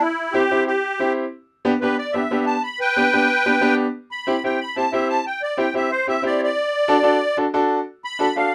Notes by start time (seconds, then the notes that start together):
0.00 E4
0.32 C4 E4 G4
0.51 C4 E4 G4
0.67 G4
0.99 C4 E4 G4
1.65 B3 D4 G4
1.81 B3 D4 G4 B4
1.98 D5
2.12 B3 D4 G4 E5
2.31 B3 D4 G4
2.46 A5
2.63 B5
2.80 B4 G5
2.96 B3 D4 G4
3.13 B3 D4 G4
3.46 B3 D4 G4
3.61 B3 D4 G4
4.11 B5
4.27 C4 E4 G4
4.44 C4 E4 G4 G5
4.61 B5
4.76 C4 E4 G4 A5
4.92 C4 E4 G4 E5
5.10 A5
5.26 G5
5.42 D5
5.57 C4 E4 G4 G5
5.74 C4 E4 G4 E5
5.91 C5
6.07 C4 E4 G4 E5
6.22 C4 E4 G4 D5
6.39 C#5
6.43 D5
6.88 D4 F#4 A4
7.03 D4 F#4 A4
7.37 D4 F#4 A4
7.54 D4 F#4 A4
8.05 B5
8.19 D4 F#4 A4
8.36 D4 F#4 A4 F5